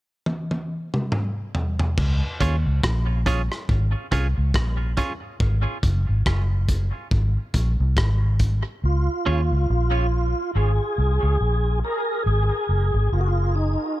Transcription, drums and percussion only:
0, 0, Header, 1, 2, 480
1, 0, Start_track
1, 0, Key_signature, -5, "major"
1, 0, Tempo, 855920
1, 1109, Time_signature, 4, 2, 24, 8
1, 7851, End_track
2, 0, Start_track
2, 0, Title_t, "Drums"
2, 148, Note_on_c, 9, 48, 52
2, 204, Note_off_c, 9, 48, 0
2, 287, Note_on_c, 9, 48, 54
2, 343, Note_off_c, 9, 48, 0
2, 526, Note_on_c, 9, 47, 63
2, 582, Note_off_c, 9, 47, 0
2, 628, Note_on_c, 9, 45, 85
2, 684, Note_off_c, 9, 45, 0
2, 867, Note_on_c, 9, 43, 74
2, 923, Note_off_c, 9, 43, 0
2, 1006, Note_on_c, 9, 43, 88
2, 1062, Note_off_c, 9, 43, 0
2, 1108, Note_on_c, 9, 36, 115
2, 1109, Note_on_c, 9, 49, 85
2, 1165, Note_off_c, 9, 36, 0
2, 1165, Note_off_c, 9, 49, 0
2, 1349, Note_on_c, 9, 36, 91
2, 1350, Note_on_c, 9, 42, 79
2, 1405, Note_off_c, 9, 36, 0
2, 1406, Note_off_c, 9, 42, 0
2, 1590, Note_on_c, 9, 36, 114
2, 1592, Note_on_c, 9, 37, 108
2, 1646, Note_off_c, 9, 36, 0
2, 1649, Note_off_c, 9, 37, 0
2, 1829, Note_on_c, 9, 36, 80
2, 1830, Note_on_c, 9, 42, 66
2, 1885, Note_off_c, 9, 36, 0
2, 1886, Note_off_c, 9, 42, 0
2, 1972, Note_on_c, 9, 37, 61
2, 2028, Note_off_c, 9, 37, 0
2, 2069, Note_on_c, 9, 36, 100
2, 2125, Note_off_c, 9, 36, 0
2, 2309, Note_on_c, 9, 42, 71
2, 2310, Note_on_c, 9, 36, 96
2, 2365, Note_off_c, 9, 42, 0
2, 2366, Note_off_c, 9, 36, 0
2, 2548, Note_on_c, 9, 36, 110
2, 2555, Note_on_c, 9, 37, 115
2, 2604, Note_off_c, 9, 36, 0
2, 2611, Note_off_c, 9, 37, 0
2, 2788, Note_on_c, 9, 42, 64
2, 2790, Note_on_c, 9, 36, 80
2, 2844, Note_off_c, 9, 42, 0
2, 2846, Note_off_c, 9, 36, 0
2, 3029, Note_on_c, 9, 36, 115
2, 3085, Note_off_c, 9, 36, 0
2, 3270, Note_on_c, 9, 36, 90
2, 3270, Note_on_c, 9, 42, 78
2, 3326, Note_off_c, 9, 36, 0
2, 3326, Note_off_c, 9, 42, 0
2, 3511, Note_on_c, 9, 36, 117
2, 3514, Note_on_c, 9, 37, 104
2, 3567, Note_off_c, 9, 36, 0
2, 3570, Note_off_c, 9, 37, 0
2, 3749, Note_on_c, 9, 36, 75
2, 3749, Note_on_c, 9, 42, 68
2, 3805, Note_off_c, 9, 36, 0
2, 3805, Note_off_c, 9, 42, 0
2, 3989, Note_on_c, 9, 36, 106
2, 4045, Note_off_c, 9, 36, 0
2, 4228, Note_on_c, 9, 42, 80
2, 4229, Note_on_c, 9, 36, 86
2, 4284, Note_off_c, 9, 42, 0
2, 4286, Note_off_c, 9, 36, 0
2, 4468, Note_on_c, 9, 36, 107
2, 4474, Note_on_c, 9, 37, 110
2, 4524, Note_off_c, 9, 36, 0
2, 4530, Note_off_c, 9, 37, 0
2, 4708, Note_on_c, 9, 42, 67
2, 4710, Note_on_c, 9, 36, 69
2, 4764, Note_off_c, 9, 42, 0
2, 4766, Note_off_c, 9, 36, 0
2, 7851, End_track
0, 0, End_of_file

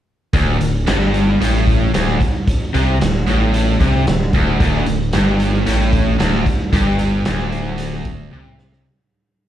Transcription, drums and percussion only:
0, 0, Header, 1, 2, 480
1, 0, Start_track
1, 0, Tempo, 532860
1, 306, Time_signature, 4, 2, 24, 8
1, 8542, End_track
2, 0, Start_track
2, 0, Title_t, "Drums"
2, 300, Note_on_c, 9, 42, 87
2, 301, Note_on_c, 9, 36, 110
2, 390, Note_off_c, 9, 42, 0
2, 391, Note_off_c, 9, 36, 0
2, 547, Note_on_c, 9, 42, 68
2, 637, Note_off_c, 9, 42, 0
2, 785, Note_on_c, 9, 42, 108
2, 792, Note_on_c, 9, 38, 118
2, 875, Note_off_c, 9, 42, 0
2, 882, Note_off_c, 9, 38, 0
2, 1027, Note_on_c, 9, 42, 72
2, 1117, Note_off_c, 9, 42, 0
2, 1274, Note_on_c, 9, 42, 95
2, 1364, Note_off_c, 9, 42, 0
2, 1508, Note_on_c, 9, 36, 86
2, 1516, Note_on_c, 9, 42, 72
2, 1598, Note_off_c, 9, 36, 0
2, 1606, Note_off_c, 9, 42, 0
2, 1749, Note_on_c, 9, 42, 96
2, 1756, Note_on_c, 9, 38, 106
2, 1839, Note_off_c, 9, 42, 0
2, 1847, Note_off_c, 9, 38, 0
2, 1989, Note_on_c, 9, 36, 86
2, 1994, Note_on_c, 9, 42, 67
2, 2079, Note_off_c, 9, 36, 0
2, 2084, Note_off_c, 9, 42, 0
2, 2229, Note_on_c, 9, 42, 89
2, 2230, Note_on_c, 9, 36, 105
2, 2319, Note_off_c, 9, 42, 0
2, 2320, Note_off_c, 9, 36, 0
2, 2473, Note_on_c, 9, 42, 70
2, 2563, Note_off_c, 9, 42, 0
2, 2714, Note_on_c, 9, 42, 95
2, 2721, Note_on_c, 9, 38, 111
2, 2804, Note_off_c, 9, 42, 0
2, 2811, Note_off_c, 9, 38, 0
2, 2947, Note_on_c, 9, 42, 67
2, 3037, Note_off_c, 9, 42, 0
2, 3188, Note_on_c, 9, 42, 88
2, 3278, Note_off_c, 9, 42, 0
2, 3427, Note_on_c, 9, 42, 69
2, 3429, Note_on_c, 9, 36, 83
2, 3517, Note_off_c, 9, 42, 0
2, 3519, Note_off_c, 9, 36, 0
2, 3667, Note_on_c, 9, 42, 84
2, 3674, Note_on_c, 9, 38, 114
2, 3757, Note_off_c, 9, 42, 0
2, 3764, Note_off_c, 9, 38, 0
2, 3900, Note_on_c, 9, 42, 62
2, 3904, Note_on_c, 9, 36, 86
2, 3990, Note_off_c, 9, 42, 0
2, 3995, Note_off_c, 9, 36, 0
2, 4146, Note_on_c, 9, 36, 100
2, 4147, Note_on_c, 9, 42, 91
2, 4236, Note_off_c, 9, 36, 0
2, 4238, Note_off_c, 9, 42, 0
2, 4380, Note_on_c, 9, 42, 68
2, 4471, Note_off_c, 9, 42, 0
2, 4618, Note_on_c, 9, 42, 96
2, 4625, Note_on_c, 9, 38, 118
2, 4708, Note_off_c, 9, 42, 0
2, 4715, Note_off_c, 9, 38, 0
2, 4862, Note_on_c, 9, 42, 76
2, 4952, Note_off_c, 9, 42, 0
2, 5104, Note_on_c, 9, 42, 95
2, 5194, Note_off_c, 9, 42, 0
2, 5342, Note_on_c, 9, 36, 90
2, 5342, Note_on_c, 9, 42, 74
2, 5432, Note_off_c, 9, 36, 0
2, 5432, Note_off_c, 9, 42, 0
2, 5583, Note_on_c, 9, 42, 89
2, 5590, Note_on_c, 9, 38, 108
2, 5673, Note_off_c, 9, 42, 0
2, 5680, Note_off_c, 9, 38, 0
2, 5822, Note_on_c, 9, 36, 84
2, 5823, Note_on_c, 9, 42, 74
2, 5912, Note_off_c, 9, 36, 0
2, 5913, Note_off_c, 9, 42, 0
2, 6060, Note_on_c, 9, 36, 103
2, 6064, Note_on_c, 9, 42, 98
2, 6150, Note_off_c, 9, 36, 0
2, 6154, Note_off_c, 9, 42, 0
2, 6296, Note_on_c, 9, 42, 69
2, 6386, Note_off_c, 9, 42, 0
2, 6532, Note_on_c, 9, 42, 104
2, 6539, Note_on_c, 9, 38, 116
2, 6622, Note_off_c, 9, 42, 0
2, 6629, Note_off_c, 9, 38, 0
2, 6775, Note_on_c, 9, 42, 71
2, 6866, Note_off_c, 9, 42, 0
2, 7007, Note_on_c, 9, 42, 92
2, 7097, Note_off_c, 9, 42, 0
2, 7250, Note_on_c, 9, 42, 71
2, 7257, Note_on_c, 9, 36, 88
2, 7340, Note_off_c, 9, 42, 0
2, 7347, Note_off_c, 9, 36, 0
2, 7486, Note_on_c, 9, 48, 62
2, 7576, Note_off_c, 9, 48, 0
2, 7610, Note_on_c, 9, 47, 64
2, 7700, Note_off_c, 9, 47, 0
2, 7738, Note_on_c, 9, 38, 90
2, 7828, Note_off_c, 9, 38, 0
2, 7858, Note_on_c, 9, 38, 83
2, 7948, Note_off_c, 9, 38, 0
2, 8542, End_track
0, 0, End_of_file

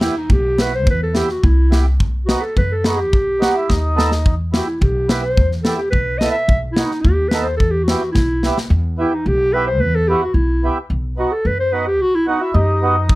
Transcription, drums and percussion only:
0, 0, Header, 1, 2, 480
1, 0, Start_track
1, 0, Key_signature, 1, "minor"
1, 0, Tempo, 563910
1, 733, Time_signature, 2, 2, 24, 8
1, 6005, Tempo, 548446
1, 11341, End_track
2, 0, Start_track
2, 0, Title_t, "Drums"
2, 11, Note_on_c, 9, 38, 86
2, 96, Note_off_c, 9, 38, 0
2, 254, Note_on_c, 9, 36, 78
2, 339, Note_off_c, 9, 36, 0
2, 498, Note_on_c, 9, 38, 87
2, 583, Note_off_c, 9, 38, 0
2, 739, Note_on_c, 9, 36, 99
2, 824, Note_off_c, 9, 36, 0
2, 976, Note_on_c, 9, 38, 77
2, 1062, Note_off_c, 9, 38, 0
2, 1098, Note_on_c, 9, 38, 21
2, 1183, Note_off_c, 9, 38, 0
2, 1222, Note_on_c, 9, 36, 70
2, 1307, Note_off_c, 9, 36, 0
2, 1465, Note_on_c, 9, 38, 72
2, 1551, Note_off_c, 9, 38, 0
2, 1704, Note_on_c, 9, 36, 82
2, 1790, Note_off_c, 9, 36, 0
2, 1947, Note_on_c, 9, 38, 81
2, 2032, Note_off_c, 9, 38, 0
2, 2185, Note_on_c, 9, 36, 74
2, 2270, Note_off_c, 9, 36, 0
2, 2421, Note_on_c, 9, 38, 81
2, 2506, Note_off_c, 9, 38, 0
2, 2666, Note_on_c, 9, 36, 86
2, 2751, Note_off_c, 9, 36, 0
2, 2912, Note_on_c, 9, 38, 81
2, 2997, Note_off_c, 9, 38, 0
2, 3147, Note_on_c, 9, 36, 65
2, 3148, Note_on_c, 9, 38, 54
2, 3232, Note_off_c, 9, 36, 0
2, 3234, Note_off_c, 9, 38, 0
2, 3393, Note_on_c, 9, 38, 73
2, 3478, Note_off_c, 9, 38, 0
2, 3504, Note_on_c, 9, 38, 55
2, 3589, Note_off_c, 9, 38, 0
2, 3624, Note_on_c, 9, 36, 86
2, 3709, Note_off_c, 9, 36, 0
2, 3862, Note_on_c, 9, 38, 83
2, 3947, Note_off_c, 9, 38, 0
2, 4101, Note_on_c, 9, 36, 75
2, 4186, Note_off_c, 9, 36, 0
2, 4335, Note_on_c, 9, 38, 93
2, 4420, Note_off_c, 9, 38, 0
2, 4575, Note_on_c, 9, 36, 89
2, 4660, Note_off_c, 9, 36, 0
2, 4696, Note_on_c, 9, 38, 21
2, 4781, Note_off_c, 9, 38, 0
2, 4807, Note_on_c, 9, 38, 86
2, 4892, Note_off_c, 9, 38, 0
2, 5049, Note_on_c, 9, 36, 67
2, 5134, Note_off_c, 9, 36, 0
2, 5285, Note_on_c, 9, 38, 72
2, 5370, Note_off_c, 9, 38, 0
2, 5522, Note_on_c, 9, 36, 89
2, 5608, Note_off_c, 9, 36, 0
2, 5758, Note_on_c, 9, 38, 85
2, 5843, Note_off_c, 9, 38, 0
2, 5883, Note_on_c, 9, 38, 22
2, 5968, Note_off_c, 9, 38, 0
2, 5997, Note_on_c, 9, 36, 71
2, 6084, Note_off_c, 9, 36, 0
2, 6232, Note_on_c, 9, 38, 88
2, 6320, Note_off_c, 9, 38, 0
2, 6483, Note_on_c, 9, 36, 78
2, 6571, Note_off_c, 9, 36, 0
2, 6726, Note_on_c, 9, 38, 88
2, 6814, Note_off_c, 9, 38, 0
2, 6966, Note_on_c, 9, 38, 52
2, 6968, Note_on_c, 9, 36, 72
2, 7054, Note_off_c, 9, 38, 0
2, 7056, Note_off_c, 9, 36, 0
2, 7210, Note_on_c, 9, 38, 64
2, 7297, Note_off_c, 9, 38, 0
2, 7336, Note_on_c, 9, 38, 60
2, 7424, Note_off_c, 9, 38, 0
2, 11291, Note_on_c, 9, 36, 86
2, 11341, Note_off_c, 9, 36, 0
2, 11341, End_track
0, 0, End_of_file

